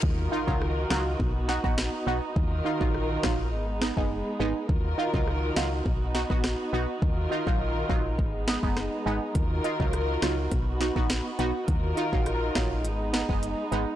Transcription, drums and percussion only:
0.03 kick loud
0.48 kick medium
0.62 cross-stick medium
0.90 cross-stick medium
0.90 snare loud
1.20 kick medium
1.49 snare medium
1.64 kick medium
1.78 cross-stick medium
1.78 snare loud
2.36 kick loud
2.81 kick loud
2.94 cross-stick medium
3.23 kick medium
3.23 cross-stick loud
3.23 snare loud
3.82 cross-stick medium
3.82 snare loud
3.97 kick medium
4.69 kick loud
5.14 kick loud
5.27 cross-stick medium
5.56 cross-stick medium
5.56 snare loud
5.86 kick loud
6.15 snare medium
6.30 kick medium
6.44 cross-stick medium
6.44 snare loud
7.02 kick loud
7.47 kick loud
7.90 kick medium
8.19 kick medium
8.48 cross-stick medium
8.48 snare loud
8.63 kick medium
8.77 cross-stick medium
8.77 snare medium
9.35 kick loud
9.35 closed hi-hat medium
9.64 closed hi-hat medium
9.80 kick medium
9.93 cross-stick medium
9.93 closed hi-hat medium
10.22 cross-stick loud
10.22 snare loud
10.22 closed hi-hat medium
10.52 kick medium
10.52 closed hi-hat medium
10.81 snare medium
10.81 closed hi-hat medium
10.96 kick medium
11.10 cross-stick medium
11.10 snare loud
11.10 closed hi-hat medium
11.39 closed hi-hat medium
11.68 kick loud
11.68 closed hi-hat medium
11.97 closed hi-hat medium
12.13 kick medium
12.26 cross-stick medium
12.26 closed hi-hat medium
12.55 kick medium
12.55 cross-stick loud
12.55 snare loud
12.55 closed hi-hat medium
12.85 closed hi-hat medium
13.14 cross-stick medium
13.14 snare loud
13.14 closed hi-hat medium
13.29 kick medium
13.43 closed hi-hat medium
13.72 closed hi-hat medium

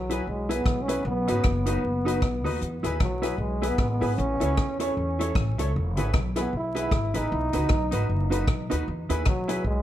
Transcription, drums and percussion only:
0.10 closed hi-hat medium
0.51 closed hi-hat medium
0.66 kick loud
0.66 cross-stick loud
0.89 closed hi-hat medium
1.28 closed hi-hat medium
1.44 kick loud
1.44 cross-stick loud
1.66 closed hi-hat medium
2.08 closed hi-hat medium
2.22 kick loud
2.22 cross-stick loud
2.46 open hi-hat medium
2.61 hi-hat pedal medium
2.84 closed hi-hat medium
3.00 kick loud
3.00 cross-stick loud
3.23 cross-stick medium
3.23 closed hi-hat medium
3.63 closed hi-hat medium
3.78 kick loud
3.78 cross-stick loud
4.02 open hi-hat medium
4.18 hi-hat pedal medium
4.41 closed hi-hat medium
4.57 kick loud
4.57 cross-stick loud
4.80 closed hi-hat medium
5.21 closed hi-hat medium
5.35 kick loud
5.35 cross-stick loud
5.59 closed hi-hat medium
5.97 closed hi-hat medium
6.14 kick loud
6.14 cross-stick loud
6.36 cross-stick medium
6.36 closed hi-hat medium
6.76 closed hi-hat medium
6.91 kick loud
6.91 cross-stick loud
7.14 closed hi-hat medium
7.53 closed hi-hat medium
7.69 kick loud
7.69 cross-stick loud
7.92 closed hi-hat medium
8.32 closed hi-hat medium
8.48 kick loud
8.48 cross-stick loud
8.71 closed hi-hat medium
9.10 closed hi-hat medium
9.25 kick loud
9.25 cross-stick loud
9.49 closed hi-hat medium

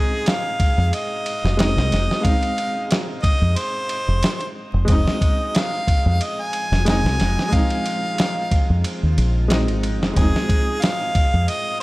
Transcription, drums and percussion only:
0.26 snare loud
0.26 ride medium
0.60 kick medium
0.60 ride medium
0.93 ride medium
1.26 ride medium
1.46 snare soft
1.59 snare loud
1.59 ride medium
1.78 snare soft
1.92 snare soft
1.92 ride medium
2.11 snare soft
2.25 kick loud
2.25 ride medium
2.43 ride soft
2.58 ride medium
2.91 snare loud
2.91 ride medium
3.24 kick medium
3.24 ride medium
3.56 ride medium
3.89 ride medium
4.23 snare loud
4.23 ride medium
4.41 ride soft
4.88 kick loud
4.88 ride medium
5.08 snare soft
5.21 kick medium
5.21 ride medium
5.55 snare loud
5.55 ride medium
5.87 kick medium
5.87 ride medium
6.21 ride medium
6.53 ride medium
6.73 snare soft
6.86 snare loud
6.86 ride medium
7.06 snare soft
7.20 snare soft
7.20 ride medium
7.39 snare soft
7.52 kick loud
7.52 ride medium
7.70 ride soft
7.86 ride medium
8.18 snare loud
8.18 ride medium
8.51 kick medium
8.51 ride medium
8.84 ride medium
9.18 ride medium
9.50 snare loud
9.50 ride medium
9.68 ride soft
9.83 ride medium
10.03 snare soft
10.16 kick loud
10.16 ride medium
10.36 snare soft
10.49 kick medium
10.49 ride medium
10.82 snare loud
10.82 ride medium
11.15 kick medium
11.15 ride medium
11.48 ride medium

